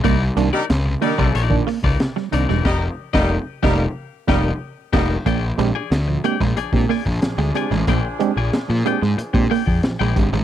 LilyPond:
<<
  \new Staff \with { instrumentName = "Clean electric guitar" } { \time 4/4 \key bes \mixolydian \tempo 4 = 92 <ees' bes' d''>16 r8 <ees' bes' d''>16 r8 <ees' bes' d''>16 <ees' bes' d''>16 <ees' bes' d''>16 r8 <ees' bes' d''>16 r8 <ees' bes' d''>16 <ees' bes' d''>16 | <g' bes' ees''>8 r16 <g' bes' ees''>8 r16 <g' bes' f''>8 r8 <g' bes' ees''>8 r8 <g' bes' ees''>8 | <aes' d'' g''>16 r8 <aes' d'' aes''>16 r8 <aes' d'' g''>16 r16 <aes' d'' aes''>16 r16 <aes' d'' aes''>16 r8. <aes' d'' aes''>16 r16 | <aes' d'' g''>16 r8 <aes' d'' aes''>16 r8 <aes' d'' g''>16 r8. <aes' d'' g''>16 <aes' d'' g''>16 r16 <aes' d'' g''>16 r8 | }
  \new Staff \with { instrumentName = "Horn section" } { \time 4/4 \key bes \mixolydian r8. <g ees' bes'>16 r8 <g ees' bes'>8. r4. r16 | <g ees' bes'>8 r16 <g ees' bes'>8 r16 <g ees' bes'>8 r8 <g ees' bes'>8 r8 <g ees' bes'>8 | r2 <f d' aes'>2~ | <f d' aes'>2.~ <f d' aes'>8 r8 | }
  \new Staff \with { instrumentName = "Tine electric piano" } { \time 4/4 \key bes \mixolydian c16 r16 <ees bes d'>16 <bes d'>16 <bes d'>16 c16 <ees bes d'>16 r8 <ees bes d'>16 r16 c16 c16 r16 <ees bes d'>16 <bes d'>16 | r8. <g bes ees'>8 r16 <g bes ees'>8 r8 <g bes ees'>8 r8 <g bes ees'>8 | <bes, f>16 r16 <aes c' d' g'>16 <d' g'>16 <d' g'>16 <bes, f>16 <aes c' d' g'>16 r8 <aes c' d' g'>16 r16 <bes, f>16 <bes, f>16 r16 <aes c' d' g'>16 r16 | <bes, f>16 r16 <aes c' d' g'>16 r16 <d' g'>16 <bes, f>16 <aes c' d' g'>16 r8 <aes c' d' g'>16 r16 <bes, f>16 <bes, f>16 r16 <aes c' d' g'>16 <d' g'>16 | }
  \new Staff \with { instrumentName = "Clean electric guitar" } { \clef bass \time 4/4 \key bes \mixolydian bes16 r16 g16 r8. bes16 g16 r8 bes16 r8 g16 r16 g16 | r1 | bes16 r16 aes16 r8. bes16 aes16 r8 bes16 r8 aes16 r16 aes16 | bes16 r16 aes16 r8. bes16 aes16 r8 bes16 r8 aes16 r16 aes16 | }
  \new Staff \with { instrumentName = "Picked electric bass" } { \clef bass \time 4/4 \key bes \mixolydian c,8 c,16 r16 des,8 r16 c,16 bes,,8 r16 des,16 r8 c,16 e,,16 | f,,8 r16 f,,8 r16 f,,8 r8 f,,8 r8 f,,8 | bes,,8 bes,,16 r16 d,8 r16 bes,,16 r16 bes,16 r16 bes,,16 r16 d,16 r16 a,,16 | bes,,16 r8 bes,,16 r16 bes,16 r16 aes,16 r16 bes,16 r16 f,16 r16 bes,,16 aes,,16 a,,16 | }
  \new DrumStaff \with { instrumentName = "Drums" } \drummode { \time 4/4 <hh bd>8 hh8 <hh sn>8 hh16 bd16 hh16 bd16 <hho sn>16 bd16 <hh sn>16 sn16 hh16 sn16 | <cymc bd sn>8. <bd sn>16 r8 <bd sn>8 r8 <bd sn>8 r8 <cymc bd sn>8 | <hh bd>8 hh8 <hh sn>8 hh16 <bd sn>16 hh16 bd16 <hho sn>16 bd16 <hh sn>16 sn16 hh16 sn16 | <hh bd>8 hh8 <hh sn>8 hh16 sn16 hh16 bd16 <hho sn>16 bd16 <hh sn>16 sn16 <hh bd>16 sn16 | }
>>